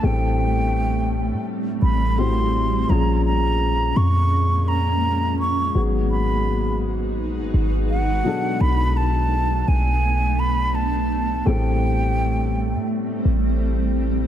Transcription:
Already playing: ambient pad A3
0.03 808-style bass A1, felt piano A2 G3 C4 A4, ambient pad G3 C4, flute G5
1.32 808-style bass A2
1.82 808-style bass A1, flute B5
2.18 felt piano A2 G3 C4 F#4, flute C6
2.88 808-style bass A#1, felt piano A#2 F3 C#4 G#4, ambient pad G#3 A#3 C#4, flute A#5
3.25 flute A#5
3.96 808-style bass F2, flute C#6
4.68 flute A#5
5.40 flute C#6
5.74 808-style bass G#1, felt piano G#2 F#3 B3 G#4, ambient pad D#4 F#4 G#4 B4
6.11 flute B5
7.18 808-style bass A#1
7.39 808-style bass G#1
7.54 808-style bass G#1
7.90 flute F#5
8.24 felt piano B2 F#3 D4 A4, ambient pad A3 B3 D4
8.61 808-style bass B1, flute B5
8.97 flute A5
9.68 808-style bass B1, flute G#5
10.39 flute B5
10.75 flute A5
11.46 808-style bass A1, felt piano A2 G3 C4 A4, ambient pad G3 A3 C4, flute G5
12.74 808-style bass A2
13.25 808-style bass A1

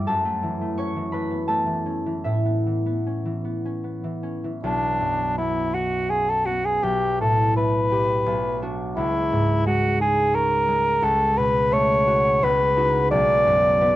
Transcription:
Already playing: harp G3 D5 E5
0.07 harp F#2 A4 A5
0.25 harp A3
0.43 harp E3
0.61 harp A3
0.78 harp C#4 C#5 C#6
0.96 harp E3
1.12 harp A3 B4 B5
1.31 harp B3
1.48 harp A3 A4 A5
1.66 harp E3
1.86 harp C#4
2.06 harp E3
2.24 harp A2 E4 E5
2.45 harp B3
2.66 harp E3
2.86 harp B3
3.06 harp C#4
3.25 harp E3
3.44 harp B3
3.65 harp C#4
3.84 harp B3
4.04 harp E3
4.23 harp C#4
4.44 harp E3
4.63 harp B1, cor anglais D4
5.00 harp F#2
5.38 harp B3, cor anglais E4
5.74 cor anglais F#4, harp F#4
6.10 harp C#4, cor anglais G#4
6.29 cor anglais A4
6.46 harp B3, cor anglais F#4
6.65 cor anglais G#4
6.83 harp B1, cor anglais G4
7.21 harp A2, cor anglais A4
7.56 harp A3, cor anglais B4
7.92 harp G4
8.26 harp B1
8.62 harp D4 F#4
8.96 harp C#2, cor anglais E4
9.32 harp G#2
9.66 harp G#3, cor anglais F#4
10.00 harp D#4, cor anglais G#4
10.34 harp C#4, cor anglais A#4
10.68 harp G#3
11.03 harp C#2, cor anglais A4
11.38 harp B2, cor anglais B4
11.71 harp A3, cor anglais C#5
12.07 harp F#4
12.43 harp C#2, cor anglais B4
12.77 harp D#4 F#4
13.11 harp B1, cor anglais D5
13.46 harp F#2
13.81 harp B3

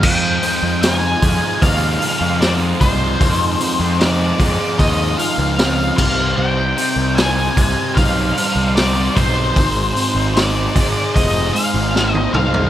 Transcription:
0.03 picked electric bass F2, distorted electric guitar F3, transistor combo organ G#3 D#4 F4 C5, lead electric guitar G5, kick, crash
0.43 distorted electric guitar C4, open hi-hat
0.63 picked electric bass F2
0.82 distorted electric guitar D#4, lead electric guitar G5, snare, open hi-hat
0.94 lead electric guitar G#5
1.22 picked electric bass F2, distorted electric guitar G#4, kick, open hi-hat
1.62 picked electric bass D#2, distorted electric guitar D#4, lead electric guitar F5, kick, open hi-hat
2.02 distorted electric guitar F3, open hi-hat
2.21 picked electric bass F2
2.41 distorted electric guitar C4, lead electric guitar D5, snare, open hi-hat
2.81 picked electric bass C2, distorted electric guitar D#4, lead electric guitar C5, kick, open hi-hat
3.21 picked electric bass F2, distorted electric guitar F3, kick, open hi-hat
3.60 distorted electric guitar C4, open hi-hat
3.80 picked electric bass F2
3.99 distorted electric guitar D#4, lead electric guitar D5, snare, open hi-hat
4.40 picked electric bass F2, distorted electric guitar G#4, kick, open hi-hat
4.79 picked electric bass D#2, distorted electric guitar D#4, lead electric guitar D#5, kick, open hi-hat
5.18 distorted electric guitar F3, lead electric guitar F5, open hi-hat
5.38 picked electric bass C#2
5.58 distorted electric guitar C4, snare, open hi-hat
5.97 picked electric bass C2, distorted electric guitar C3, transistor combo organ G3 C4 D#4, lead electric guitar F5, kick, crash
6.37 picked electric bass C2, distorted electric guitar C3, lead electric guitar G5
6.78 distorted electric guitar C4, open hi-hat
6.96 picked electric bass C2
7.16 distorted electric guitar D#4, lead electric guitar G#5, snare, open hi-hat
7.57 picked electric bass C2, distorted electric guitar G4, kick, open hi-hat
7.95 picked electric bass B1, distorted electric guitar D#4, lead electric guitar F5, kick, open hi-hat
8.36 distorted electric guitar G3, open hi-hat
8.56 picked electric bass C2
8.76 distorted electric guitar C4, lead electric guitar D5, snare, open hi-hat
9.15 picked electric bass B1, distorted electric guitar D#4, lead electric guitar C5, kick, open hi-hat
9.55 picked electric bass G#1, distorted electric guitar G#2, transistor combo organ G#3 D#4, kick, open hi-hat
9.96 distorted electric guitar C4, open hi-hat
10.15 picked electric bass G#1
10.34 distorted electric guitar D#4, lead electric guitar D5, snare, open hi-hat
10.75 picked electric bass G#1, distorted electric guitar G#4, kick, open hi-hat
11.14 picked electric bass F1, distorted electric guitar D#4, lead electric guitar D#5, kick, open hi-hat
11.53 distorted electric guitar G#3, lead electric guitar F5, open hi-hat
11.74 picked electric bass G#1
11.94 distorted electric guitar C4, snare
12.13 lead electric guitar D#5, high tom
12.34 picked electric bass C2, distorted electric guitar D#4, lead electric guitar F5, mid tom
12.54 floor tom

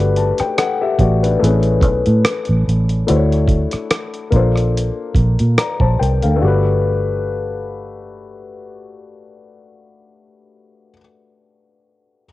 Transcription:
Already playing: fingered electric bass G1, grand piano A3 D4 F#4 G4 B4
0.00 closed hi-hat
0.16 grand piano A5, closed hi-hat
0.38 grand piano B4 G5, muted fingered electric bass stroke, cross-stick, closed hi-hat
0.58 grand piano A4 F#5, cross-stick, closed hi-hat
0.81 grand piano G4 E5
0.99 fingered electric bass A1, grand piano F#4 D5, kick, closed hi-hat
1.23 grand piano D4 B4, closed hi-hat
1.39 fingered electric bass A1, grand piano A3 C4 E4
1.43 grand piano C#4 G#4 B4, closed hi-hat
1.63 closed hi-hat
1.81 fingered electric bass B1, kick, closed hi-hat
2.06 fingered electric bass A2, closed hi-hat
2.25 cross-stick, closed hi-hat
2.45 fingered electric bass A1, closed hi-hat
2.68 fingered electric bass A1, closed hi-hat
2.89 closed hi-hat
3.07 fingered electric bass D2, grand piano A3 D4 E4 F#4 C5, closed hi-hat
3.16 grand piano C#5
3.33 closed hi-hat
3.48 kick, closed hi-hat
3.72 muted fingered electric bass stroke, cross-stick, closed hi-hat
3.91 cross-stick, closed hi-hat
4.14 closed hi-hat
4.30 fingered electric bass A#1, grand piano A#3 D4 F4, kick, closed hi-hat
4.35 grand piano A4 C5
4.56 cross-stick, closed hi-hat
4.77 closed hi-hat
5.15 fingered electric bass A#1, kick, closed hi-hat
5.39 fingered electric bass A#2, closed hi-hat
5.58 grand piano D5 A#5, cross-stick, closed hi-hat
5.80 fingered electric bass A#1, grand piano C5 A5, kick
6.00 fingered electric bass C2, grand piano A#4 G5, closed hi-hat
6.23 fingered electric bass D2, grand piano A4 F5, closed hi-hat
6.36 grand piano A3 D4
6.42 fingered electric bass G1, grand piano F#4 G4
6.47 grand piano B4

